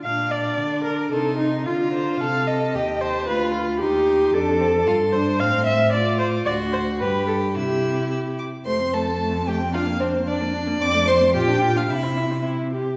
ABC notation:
X:1
M:2/4
L:1/16
Q:1/4=112
K:Bb
V:1 name="Violin"
d'8 | c'4 b4 | a4 g2 a2 | =b4 c'4 |
[K:F] d'4 c'4 | c'4 d'4 | c'4 =b4 | e'4 e'2 d'2 |
c'2 a4 g2 | f2 c2 d4 | d'2 c'2 g3 f | e4 z4 |]
V:2 name="Violin"
D8 | E4 F4 | A4 G4 | F4 E4 |
[K:F] D2 C2 F2 D2 | C4 F4 | ^F4 G4 | E6 z2 |
c2 A4 G2 | F2 C2 D4 | d2 c2 G3 F | E4 z4 |]
V:3 name="Viola"
f2 d4 B2 | A2 E2 F2 c2 | f2 e4 c2 | =B2 F2 G4 |
[K:F] A6 c2 | f2 e2 d2 c2 | d2 c2 =B2 A2 | G6 z2 |
A, C A, C A, C A, C | D B, D B, D B, D B, | C A, C A, F D F D | E C E C E2 G2 |]
V:4 name="Cello" clef=bass
B,,4 D,4 | C,4 D,4 | C,4 E,,4 | D,,4 E,,4 |
[K:F] F,,4 G,,4 | A,,8 | D,,4 G,,4 | C,6 z2 |
F,,8- | F,,8 | F,,4 B,,4 | C,6 z2 |]